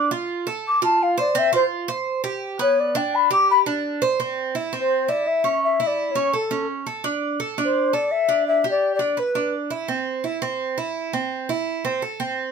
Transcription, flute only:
0.68 D6
0.84 A5
1.03 F5
1.20 D5
1.39 E5
1.55 C5
2.62 C#5
2.80 D5
2.97 G5
3.15 B5
3.32 D6
3.51 B5
4.80 C5
5.09 D5
5.27 E5
5.64 E5
5.87 D5
6.11 C#5
6.34 A4
7.65 C5
7.94 D5
8.11 E5
8.48 E5
8.71 D5
8.95 D5
9.19 B4

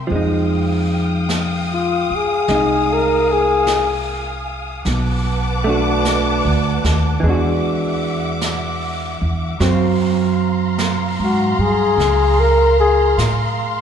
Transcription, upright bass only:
0.10 F2
2.10 muted upright bass stroke
2.48 C2
4.86 B1
6.45 D2
6.84 D#2
7.23 E2
9.21 E2
9.60 F#2
11.19 G#2
11.58 G2
11.97 C#2
13.18 A2

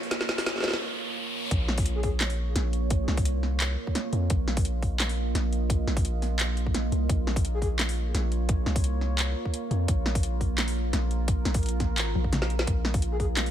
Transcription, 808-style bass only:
1.51 A#1
2.56 A#1
3.08 C2
4.13 F2
4.30 A#1
5.35 A#1
5.87 A#1
6.92 C2
7.10 A#1
8.14 A#1
8.66 C2
9.71 F2
9.89 A#1
10.93 A#1
11.46 A#1
11.94 A1
12.15 A#1
12.68 A#1

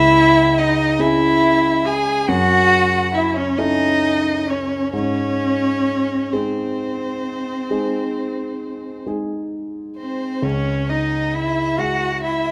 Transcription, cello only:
Already playing: E4
0.58 D#4
1.00 E4
1.85 G#4
2.28 F#4
3.15 E4
3.36 C#4
3.60 D#4
4.48 C#4
4.93 C#4
6.34 C4
9.99 C4
10.44 C#4
10.89 D#4
11.35 E4
11.79 F#4
12.23 E4

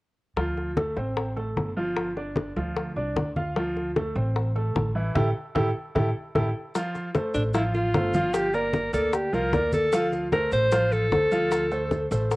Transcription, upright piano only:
0.37 F3 F4
0.77 A3 A4
0.96 C4 C5
1.36 A3 A4
1.77 F3 F4
2.17 D4 D5
2.56 F3 F4
2.96 D4 D5
3.36 F4 F5
3.56 F3 F4
3.96 A3 A4
4.16 C4 C5
4.55 A3 A4
4.95 E3 E4
5.15 E4 G4 A4
5.55 E4 G4 A4
5.95 E4 G4 A4
6.35 E4 G4 A4
6.75 F3 F4 F5
7.15 A3 A4 C5
7.54 F3 F4 F5
7.94 A3 A4 C5
8.14 F3 F4 F5
8.53 A#3 A#4 D5
8.93 A#3 A#4 D5
9.32 F3 F4 F5
9.53 A#3 A#4 D5
9.93 F3 F4 F5
10.33 A3 A4 C5
10.72 F3 F4 F5
11.12 A3 A4 C5
11.32 F3 F4 F5
11.71 A3 A4 C5
12.11 A3 A4 C5

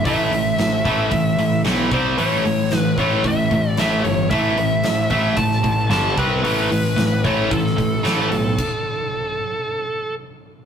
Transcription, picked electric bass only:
0.06 A1
0.31 A1
0.58 A1
0.85 A1
1.12 A1
1.38 A1
1.65 B1
1.92 C2
2.20 A1
2.46 A1
2.73 A1
2.98 A1
3.25 A1
3.51 A1
3.78 A1
4.05 G1
4.31 A1
4.59 A1
4.85 A1
5.10 A1
5.37 A1
5.64 A1
5.90 G1
6.18 C2
6.44 A1
6.72 A1
6.98 A1
7.25 A1
7.51 A1
7.78 A1
8.05 A1
8.32 B1

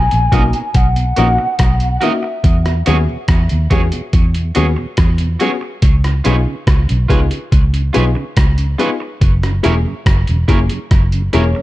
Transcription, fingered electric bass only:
0.13 A#1
0.33 B1
0.75 B1
1.18 A#1
1.60 B1
2.45 E2
2.88 D#2
3.29 E2
3.52 D#2
3.71 E2
4.14 E2
4.57 D#2
4.99 E2
5.83 C#2
6.26 B1
6.68 C#2
6.90 B1
7.10 C#2
7.53 C#2
7.96 B1
8.38 C#2
9.22 F#1
9.66 E1
10.07 F#1
10.29 E1
10.49 F#1
10.92 F#1
11.34 E1

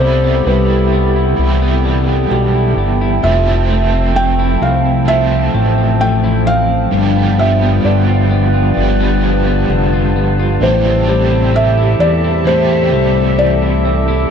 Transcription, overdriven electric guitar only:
0.00 G3 E4
1.37 E3 G3
1.43 B3 E4
3.22 F3 A3 C4 E4
3.71 A3 C4
5.05 F3 A3
5.11 C4
6.91 G2 D3 F3 G3 B3 G4
7.37 F3 G3 B3 G4
8.74 F3 G3
8.80 B3 G4
10.60 A2 E3 G3 C4 G4
11.06 G3 C4 G4
12.44 E3 G3
12.50 C4 G4

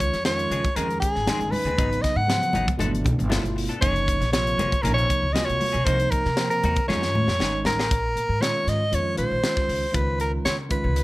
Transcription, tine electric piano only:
Already playing: D#3 G#3 C#4 F4
0.24 D#3 G#3 C#4 F4
0.76 D#3 G#3 C#4 G#4
1.27 D#3 G#3 C#4 D#4
1.77 C#3 F#3 B3 D#4
2.27 C#3 F3 F#3 B3
2.78 B2 E3 A3 D4
3.29 B2 A3 E4 F4
3.80 C3 F3 A#3 D#4
4.32 C3 F3 A#3 F4
4.83 C3 F3 A#3 D#4
5.33 C3 A#3 F4 F#4
5.85 C3 F3 A#3 D#4
6.36 C3 F3 A#3 C4
6.87 D#3 G#3 C#4 F4
7.39 D#3 G#3 C#4 D#4
8.40 D#3 G#3 C#4 F4
8.90 D#3 G#3 C#4 F4
9.15 D#3 G#3 C#4 F4
9.42 D#3 G#3 C#4 F4
9.92 D#3 G#3 C#4 F4
10.69 D#3 G#3 C#4 F4

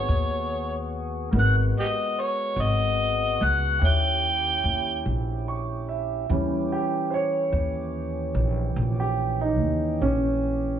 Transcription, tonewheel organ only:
Already playing: B3 F#4 G#4
1.33 G#3 B3 F#4
3.80 C#4 E4 G4
6.30 E3 C#4 G4

